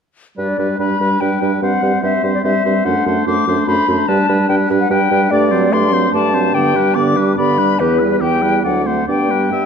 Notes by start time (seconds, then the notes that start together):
0.37 G2 G3 D4 B4 D5
0.57 G2 G3 D4 B4
0.79 G2 G3 D4 B4 B5
0.99 G2 G3 D4 B4
1.20 G2 G3 D4 B4 G5
1.41 G2 G3 D4 B4
1.62 G2 G3 C4 C5 F#5
1.82 G2 G3 C4 C5
2.03 G2 G3 C4 C5 E5
2.23 G2 G3 C4 C5
2.34 D5
2.44 G2 G3 C4 C5 E5
2.64 G2 G3 C4 C5
2.85 F#2 A3 D4 C5 F#5
3.06 F#2 A3 D4 C5
3.26 F#2 A3 D4 C5 D6
3.47 F#2 A3 D4 C5
3.67 F#2 A3 D4 C5 B5
3.88 F#2 A3 D4 C5
4.08 G2 G3 D4 B4 A5
4.29 G2 G3 D4 B4
4.49 G2 G3 D4 B4 G5
4.69 G2 G3 D4 B4
4.80 F#5
4.89 G2 G3 D4 B4 G5
5.10 G2 G3 D4 B4
5.30 G2 A3 D4 D5
5.51 F#3 C4 C5
5.72 G2 A3 D4 D5 C6
5.92 F#3 C4 C5
6.12 G2 A3 D4 D5 A5
6.33 F#3 C4 C5
6.53 G2 D3 B3 D5 G5
6.75 G3 D4 B4
6.94 G2 D3 B3 D5 D6
7.16 G3 D4 B4
7.37 G2 D3 B3 D5 B5
7.58 G3 D4 B4
7.79 E2 E3 B3 G4 B4
8.00 G3 E4 B4
8.21 E2 E3 B3 G4 G5
8.42 G3 E4 B4
8.64 D2 F#3 D4 D5 F#5
8.86 A3 C4 C5 F#5
9.07 G2 B3 D4 D5 G5
9.29 G3 B3 B4
9.51 G2 B3 D4 E5